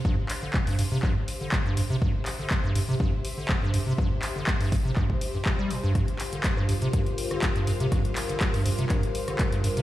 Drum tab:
HH |--o--oo---o---o-|--o---o---o---o-|--o--oo---o---o-|xxoxx-oxxxoxxxox|
CP |--x-x---x---x---|--x-x-------x---|--x-x---x---x---|--x-x-------x---|
SD |----------------|----------------|----------------|r----r-----r----|
BD |o---o---o---o---|o---o---o---o---|o---o-o-oo--o---|o---o---o---o---|

HH |xxoxxooxxxoxxxox|
CP |--x-x---x---x---|
SD |r----r-----r----|
BD |o---o---o---o---|